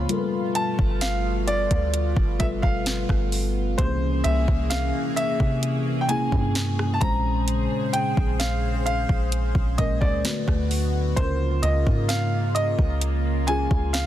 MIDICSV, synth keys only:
0, 0, Header, 1, 2, 480
1, 0, Start_track
1, 0, Tempo, 923077
1, 48, Time_signature, 4, 2, 24, 8
1, 7313, End_track
2, 0, Start_track
2, 0, Title_t, "Synth keys"
2, 0, Program_c, 0, 88
2, 0, Control_c, 0, 64, 127
2, 0, Note_on_c, 0, 49, 78
2, 0, Note_on_c, 0, 58, 68
2, 0, Note_on_c, 0, 65, 74
2, 0, Note_on_c, 0, 72, 71
2, 0, Note_on_c, 0, 73, 87
2, 43, Note_on_c, 0, 55, 77
2, 48, Note_off_c, 0, 65, 0
2, 48, Note_on_c, 0, 65, 65
2, 54, Note_on_c, 0, 69, 73
2, 55, Note_off_c, 0, 58, 0
2, 55, Control_c, 0, 64, 0
2, 57, Note_off_c, 0, 73, 0
2, 58, Note_off_c, 0, 49, 0
2, 58, Note_off_c, 0, 72, 0
2, 58, Note_on_c, 0, 70, 67
2, 87, Note_off_c, 0, 70, 0
2, 93, Note_on_c, 0, 71, 78
2, 150, Control_c, 0, 64, 127
2, 690, Note_off_c, 0, 55, 0
2, 693, Note_off_c, 0, 65, 0
2, 695, Note_off_c, 0, 69, 0
2, 715, Note_off_c, 0, 71, 0
2, 1243, Note_on_c, 0, 55, 79
2, 1248, Note_on_c, 0, 65, 70
2, 1254, Note_on_c, 0, 69, 75
2, 1258, Note_on_c, 0, 71, 83
2, 1729, Note_off_c, 0, 55, 0
2, 1731, Note_off_c, 0, 65, 0
2, 1734, Note_off_c, 0, 69, 0
2, 1736, Note_off_c, 0, 71, 0
2, 1962, Note_on_c, 0, 48, 75
2, 1967, Note_on_c, 0, 58, 72
2, 1970, Note_on_c, 0, 61, 69
2, 1974, Note_on_c, 0, 52, 71
2, 1975, Control_c, 0, 64, 0
2, 1979, Note_on_c, 0, 68, 77
2, 2056, Control_c, 0, 64, 127
2, 2610, Note_off_c, 0, 48, 0
2, 2612, Note_off_c, 0, 58, 0
2, 2613, Note_off_c, 0, 61, 0
2, 2615, Note_off_c, 0, 52, 0
2, 2618, Note_off_c, 0, 68, 0
2, 3160, Note_on_c, 0, 48, 80
2, 3165, Note_on_c, 0, 58, 69
2, 3168, Note_on_c, 0, 61, 71
2, 3172, Note_on_c, 0, 64, 70
2, 3177, Note_on_c, 0, 68, 90
2, 3641, Note_on_c, 0, 46, 85
2, 3644, Note_off_c, 0, 48, 0
2, 3646, Note_off_c, 0, 58, 0
2, 3646, Note_off_c, 0, 61, 0
2, 3646, Note_on_c, 0, 56, 73
2, 3650, Note_off_c, 0, 64, 0
2, 3652, Note_off_c, 0, 68, 0
2, 3652, Note_on_c, 0, 61, 74
2, 3655, Control_c, 0, 64, 0
2, 3656, Note_on_c, 0, 72, 90
2, 3732, Control_c, 0, 64, 127
2, 4413, Note_off_c, 0, 46, 0
2, 4415, Note_off_c, 0, 56, 0
2, 4418, Note_off_c, 0, 61, 0
2, 4420, Note_off_c, 0, 72, 0
2, 5081, Note_on_c, 0, 46, 74
2, 5087, Note_on_c, 0, 56, 72
2, 5092, Note_on_c, 0, 61, 71
2, 5097, Note_on_c, 0, 70, 85
2, 5322, Note_on_c, 0, 50, 77
2, 5324, Note_off_c, 0, 46, 0
2, 5327, Note_off_c, 0, 56, 0
2, 5327, Note_on_c, 0, 57, 71
2, 5330, Note_off_c, 0, 61, 0
2, 5332, Note_off_c, 0, 70, 0
2, 5332, Note_on_c, 0, 66, 68
2, 5335, Control_c, 0, 64, 0
2, 5337, Note_on_c, 0, 71, 84
2, 5415, Control_c, 0, 64, 127
2, 5709, Note_off_c, 0, 50, 0
2, 5711, Note_off_c, 0, 57, 0
2, 5714, Note_off_c, 0, 66, 0
2, 5717, Note_off_c, 0, 71, 0
2, 5803, Note_on_c, 0, 49, 75
2, 5808, Note_on_c, 0, 61, 72
2, 5813, Note_on_c, 0, 65, 66
2, 5816, Control_c, 0, 64, 0
2, 5818, Note_on_c, 0, 70, 86
2, 5899, Control_c, 0, 64, 127
2, 6450, Note_off_c, 0, 49, 0
2, 6452, Note_off_c, 0, 61, 0
2, 6455, Note_off_c, 0, 65, 0
2, 6458, Note_off_c, 0, 70, 0
2, 7003, Note_on_c, 0, 49, 81
2, 7008, Note_on_c, 0, 61, 71
2, 7014, Note_on_c, 0, 65, 67
2, 7018, Note_on_c, 0, 68, 90
2, 7313, Note_off_c, 0, 49, 0
2, 7313, Note_off_c, 0, 61, 0
2, 7313, Note_off_c, 0, 65, 0
2, 7313, Note_off_c, 0, 68, 0
2, 7313, End_track
0, 0, End_of_file